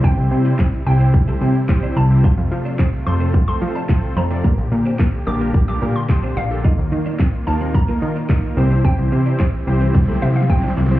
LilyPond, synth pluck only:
\new Staff \with { instrumentName = "Synth pluck" } { \time 4/4 \key c \mixolydian \tempo 4 = 109 g''4. g''2 a''8~ | a''4 r8 c'''8. c'''8 a''8. bes''8~ | bes''4 r8 d'''8. d'''8 c'''8. f''8~ | f''4. a''8 bes''2 |
g''2~ g''8 e''16 f''16 g''4 | }